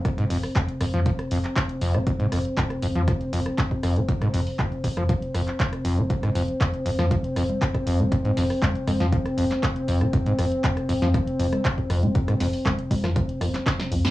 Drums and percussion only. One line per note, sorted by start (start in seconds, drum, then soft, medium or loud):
0.05 kick loud
0.05 cross-stick medium
0.05 closed hi-hat medium
0.18 closed hi-hat soft
0.30 open hi-hat loud
0.43 cross-stick medium
0.43 open hi-hat medium
0.56 kick loud
0.56 clap loud
0.56 closed hi-hat medium
0.69 closed hi-hat soft
0.81 cross-stick medium
0.81 open hi-hat loud
0.94 closed hi-hat soft
1.06 kick loud
1.06 closed hi-hat medium
1.19 cross-stick medium
1.19 closed hi-hat soft
1.31 open hi-hat loud
1.44 clap soft
1.44 closed hi-hat soft
1.56 kick loud
1.56 cross-stick medium
1.56 clap loud
1.56 closed hi-hat medium
1.69 closed hi-hat soft
1.82 open hi-hat loud
1.95 cross-stick medium
1.95 closed hi-hat soft
2.07 kick loud
2.07 closed hi-hat medium
2.20 closed hi-hat soft
2.32 cross-stick medium
2.32 open hi-hat loud
2.45 closed hi-hat soft
2.57 kick loud
2.57 clap loud
2.57 closed hi-hat medium
2.70 cross-stick medium
2.70 closed hi-hat soft
2.82 open hi-hat loud
2.95 closed hi-hat soft
3.08 kick loud
3.08 cross-stick medium
3.08 closed hi-hat medium
3.21 closed hi-hat soft
3.33 open hi-hat loud
3.46 cross-stick medium
3.46 closed hi-hat soft
3.58 kick loud
3.58 clap loud
3.58 closed hi-hat medium
3.71 kick medium
3.71 closed hi-hat soft
3.83 cross-stick medium
3.83 open hi-hat loud
3.96 closed hi-hat soft
4.09 kick loud
4.09 closed hi-hat medium
4.22 cross-stick medium
4.22 closed hi-hat soft
4.34 open hi-hat loud
4.47 open hi-hat medium
4.59 kick loud
4.59 cross-stick medium
4.59 clap loud
4.59 closed hi-hat medium
4.72 closed hi-hat soft
4.84 kick medium
4.84 open hi-hat loud
4.97 cross-stick medium
5.09 kick loud
5.09 closed hi-hat medium
5.22 closed hi-hat soft
5.35 cross-stick medium
5.35 open hi-hat loud
5.48 clap soft
5.48 closed hi-hat soft
5.60 kick loud
5.60 clap loud
5.60 closed hi-hat medium
5.73 cross-stick medium
5.73 closed hi-hat soft
5.85 open hi-hat loud
5.98 closed hi-hat soft
6.10 kick loud
6.10 closed hi-hat medium
6.23 cross-stick medium
6.23 closed hi-hat soft
6.35 open hi-hat loud
6.48 closed hi-hat soft
6.61 kick loud
6.61 cross-stick medium
6.61 clap loud
6.61 closed hi-hat medium
6.74 closed hi-hat soft
6.86 open hi-hat loud
6.99 cross-stick medium
6.99 snare soft
6.99 closed hi-hat soft
7.11 kick loud
7.11 closed hi-hat medium
7.24 closed hi-hat soft
7.36 cross-stick medium
7.36 open hi-hat loud
7.49 closed hi-hat soft
7.49 low conga medium
7.61 kick loud
7.61 clap loud
7.61 closed hi-hat medium
7.74 kick medium
7.74 cross-stick medium
7.74 closed hi-hat soft
7.87 open hi-hat loud
8.00 closed hi-hat soft
8.00 low conga medium
8.12 kick loud
8.12 cross-stick medium
8.12 closed hi-hat medium
8.25 closed hi-hat soft
8.37 snare soft
8.37 open hi-hat loud
8.50 cross-stick medium
8.50 open hi-hat medium
8.62 kick loud
8.62 clap loud
8.62 closed hi-hat medium
8.62 low conga medium
8.75 closed hi-hat soft
8.87 cross-stick medium
8.87 open hi-hat loud
8.87 low conga medium
9.01 snare soft
9.01 closed hi-hat soft
9.13 kick loud
9.13 closed hi-hat medium
9.26 cross-stick medium
9.26 closed hi-hat soft
9.38 open hi-hat loud
9.51 snare soft
9.51 clap soft
9.51 closed hi-hat soft
9.63 kick loud
9.63 cross-stick medium
9.63 clap loud
9.63 closed hi-hat medium
9.76 closed hi-hat soft
9.88 open hi-hat loud
10.01 cross-stick medium
10.01 closed hi-hat soft
10.13 kick loud
10.13 closed hi-hat medium
10.26 closed hi-hat soft
10.39 cross-stick medium
10.39 open hi-hat loud
10.52 closed hi-hat soft
10.64 kick loud
10.64 clap loud
10.64 closed hi-hat medium
10.77 cross-stick medium
10.77 closed hi-hat soft
10.89 open hi-hat loud
11.02 snare soft
11.02 closed hi-hat soft
11.14 kick loud
11.14 cross-stick medium
11.14 closed hi-hat medium
11.27 closed hi-hat soft
11.40 open hi-hat loud
11.53 cross-stick medium
11.53 closed hi-hat soft
11.53 low conga medium
11.65 kick loud
11.65 clap loud
11.65 closed hi-hat medium
11.78 kick medium
11.78 closed hi-hat soft
11.90 cross-stick medium
11.90 open hi-hat medium
12.03 closed hi-hat soft
12.03 low conga loud
12.15 kick loud
12.15 closed hi-hat medium
12.28 cross-stick medium
12.28 closed hi-hat soft
12.40 snare soft
12.40 open hi-hat loud
12.53 open hi-hat medium
12.66 kick loud
12.66 cross-stick medium
12.66 clap loud
12.66 closed hi-hat medium
12.66 low conga medium
12.79 closed hi-hat soft
12.91 kick medium
12.91 open hi-hat loud
12.91 low conga loud
13.04 cross-stick medium
13.04 snare soft
13.04 closed hi-hat soft
13.16 kick loud
13.16 closed hi-hat medium
13.29 closed hi-hat soft
13.41 cross-stick medium
13.41 open hi-hat loud
13.54 snare soft
13.54 clap soft
13.54 closed hi-hat soft
13.66 kick loud
13.66 snare medium
13.66 clap loud
13.66 closed hi-hat medium
13.79 snare medium
13.79 closed hi-hat soft
13.92 open hi-hat loud
14.05 snare medium
14.05 closed hi-hat soft